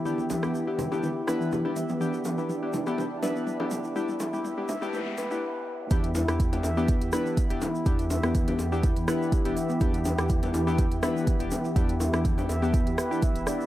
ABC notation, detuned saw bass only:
X:1
M:4/4
L:1/16
Q:"Swing 16ths" 1/4=123
K:Em
V:1 name="Detuned saw bass" clef=bass
E,,3 E,,3 E,,3 E,, z6 | E,,3 E,,3 E,,3 E,, z6 | E,,3 E,,3 E,,3 E,, z6 | E,,3 E,,3 E,,3 E,, z3 E,,, z2 |
E,,3 E,,3 E,,3 E,, z3 E,,, z2 | E,,3 E,,3 E,,3 E,, z3 E,,, z2 | E,,3 E,,3 E,,3 E,, z3 E,,, z2 |]